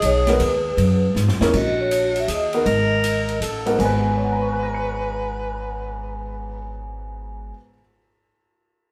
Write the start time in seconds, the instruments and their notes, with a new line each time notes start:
Already playing: tenor saxophone G#4
0.02 upright bass B1, vibraphone C#5, hi-hat pedal, ride
0.27 upright piano G#3 B3 D#4 F#4 A#4, vibraphone B4, snare, ride
0.39 upright bass D#2, ride
0.77 upright bass F#2, ride
1.15 upright bass G#2, snare, hi-hat pedal
1.28 upright bass F#2, snare
1.40 upright bass D#2, upright piano G#3 A#3 C#4 E4 A#4, snare
1.53 upright bass A#1, tenor saxophone F#4, vibraphone D#5, kick, crash
1.80 vibraphone C#5
1.91 hi-hat pedal, ride
2.16 ride
2.20 vibraphone E5
2.28 upright bass D#2, tenor saxophone G#4, hi-hat pedal, ride
2.34 vibraphone D#5
2.53 upright piano B3 D#4 F#4 A#4, ride
2.66 upright bass G#1, tenor saxophone A#4, ride
3.04 hi-hat pedal, ride
3.29 ride
3.40 upright bass A1, tenor saxophone A4, hi-hat pedal, ride
3.66 upright piano G#2 B3 D#4 F#4 A#4, ride
3.74 upright piano G#2 G#3
3.79 upright bass G#1, upright piano B3 F#4, tenor saxophone B4, vibraphone G#5, kick, crash
3.85 upright piano B4
4.17 upright piano C#5
4.24 upright piano F#5
4.32 upright piano A#5
4.42 upright piano C#6
4.52 upright piano F#6
4.63 upright piano A#6
4.74 upright piano C#7